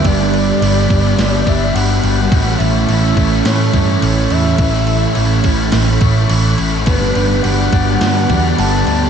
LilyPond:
<<
  \new Staff \with { instrumentName = "Soft synth lead" } { \time 4/4 \key g \lydian \tempo 4 = 105 d''2~ d''8 e''8 fis''8 fis''8~ | fis''8 e''4 r8 cis''8 cis''8 cis''8 e''8~ | e''4. r2 r8 | b'4 fis''4 fis''4 a''4 | }
  \new Staff \with { instrumentName = "String machine" } { \time 4/4 \key g \lydian << { b''1~ | b''1~ | b''1~ | b''1 | } \\ { <g' e''>1 | <a' cis''>1~ | <a' cis''>1 | <g' d''>1 | } >> }
  \new Staff \with { instrumentName = "Overdriven electric guitar" } { \time 4/4 \key g \lydian <g, d g b d'>4 <d g b d'>8 <g b d'>4 <g b d'>8 <d g b d'>4 | <a, e a cis' e'>4 <e a cis' e'>8 <a cis' e'>4 <a cis' e'>8 <e a cis' e'>4 | <a, e a cis' e'>4 <e a cis' e'>8 <a cis' e'>4 <a cis' e'>8 <e a cis' e'>4 | <g, d g b d'>4 <d g b d'>8 <g b d'>4 <g b d'>8 <d g b d'>4 | }
  \new Staff \with { instrumentName = "Overdriven electric guitar" } { \clef bass \time 4/4 \key g \lydian <g, d g b d'>1 | <a, e a cis' e'>1~ | <a, e a cis' e'>1 | <g, d g b d'>1 | }
  \new Staff \with { instrumentName = "Picked electric bass" } { \clef bass \time 4/4 \key g \lydian g,,4 g,,8 g,,8 g,,8 g,,8 g,,8 g,,8 | a,,8 a,,8 a,,8 a,,8 a,8 g,8 a,,8 e,8 | a,,4 a,,8 a,,8 a,,8 a,,8 a,,8 a,,8 | g,,8 g,,8 g,,8 g,,8 g,8 e,8 g,,8 d,8 | }
  \new DrumStaff \with { instrumentName = "Drums" } \drummode { \time 4/4 <cymc bd>16 sn16 cymc8 cymc8 <cymc bd>8 <cymc sn>8 <cymc bd>8 cymc8 cymc8 | <cymc bd>8 cymc8 cymc8 <cymc bd>8 <cymc sn>8 <cymc bd>8 cymc8 cymc8 | <cymc bd>16 sn16 cymc8 cymc8 <cymc bd>8 <cymc sn>8 <cymc bd>8 cymc8 cymc8 | <cymc bd>8 cymc8 cymc8 <cymc bd>8 <cymc sn>8 <cymc bd>8 cymc8 cymc8 | }
>>